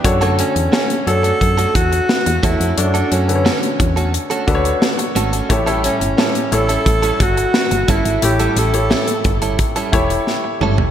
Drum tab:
HH |xxxx-xxxxxxx-xxx|xxxx-xxxxxxx-xxx|xxxx-xxxxxxx-xxx|xxxx-xxxxxxx----|
SD |----o-------o---|----o-------o---|----o-------o---|----o-------o---|
T2 |----------------|----------------|----------------|--------------o-|
FT |----------------|----------------|----------------|---------------o|
BD |o-------o-o---o-|------o---o-----|o-------o-o---o-|------o-o-o-----|